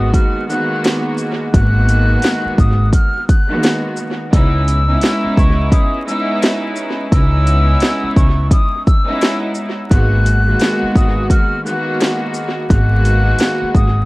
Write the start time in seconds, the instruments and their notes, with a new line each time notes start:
Already playing: upright bass G#1, string section D#3 G#3 A#3 B3 F#4, flute D#6
0.14 flute F6, kick, closed hi-hat
0.48 string section D#3 G#3 A#3 B3 F#4, flute F#6, shaker
0.84 finger snap, snare, closed hi-hat
1.18 shaker
1.53 upright bass G#1, string section D#3 G#3 A#3 B3 F#4, flute F#6, kick, closed hi-hat
1.89 closed hi-hat, shaker
2.22 finger snap, snare, closed hi-hat
2.46 muted upright bass stroke
2.58 upright bass G#1, flute D#6, kick, shaker
2.93 flute F6, kick, closed hi-hat
3.29 flute F#6, kick, closed hi-hat, shaker
3.48 string section D#3 G#3 A#3 B3 F#4
3.63 finger snap, snare, closed hi-hat
3.97 shaker
4.33 upright bass C#2, string section G#3 B3 C#4 D#4 E4, flute E6, kick, closed hi-hat
4.68 closed hi-hat, shaker
4.87 string section G#3 B3 C#4 D#4 E4
5.01 finger snap, snare, closed hi-hat
5.25 muted upright bass stroke
5.37 upright bass C#2, flute C#6, kick, shaker
5.72 flute D#6, kick, closed hi-hat
6.06 string section G#3 B3 C#4 D#4 E4, flute E6, shaker
6.42 finger snap, snare, closed hi-hat
6.76 shaker
7.11 upright bass C#2, string section G#3 B3 C#4 D#4 E4, flute E6, kick, closed hi-hat
7.47 closed hi-hat, shaker
7.80 finger snap, snare, closed hi-hat
8.04 muted upright bass stroke
8.16 upright bass C#2, flute C#6, kick, shaker
8.51 flute D#6, kick, closed hi-hat
8.86 flute E6, kick, shaker
9.06 string section G#3 B3 C#4 D#4 E4
9.21 finger snap, snare, closed hi-hat
9.55 shaker
9.90 upright bass G#1, string section D#3 G#3 A#3 B3 F#4, flute F#6, kick, closed hi-hat
10.26 closed hi-hat, shaker
10.47 string section D#3 G#3 A#3 B3 F#4
10.60 finger snap, snare, closed hi-hat
10.83 muted upright bass stroke
10.96 upright bass G#1, flute D#6, kick, shaker
11.30 flute F6, kick, closed hi-hat
11.65 string section D#3 G#3 A#3 B3 F#4, flute F#6, shaker
12.00 finger snap, snare, closed hi-hat
12.34 shaker
12.69 upright bass G#1, string section D#3 G#3 A#3 B3 F#4, flute F#6, kick, closed hi-hat
13.05 closed hi-hat, shaker
13.39 finger snap, snare, closed hi-hat
13.62 muted upright bass stroke
13.75 upright bass G#1, flute D#6, kick, shaker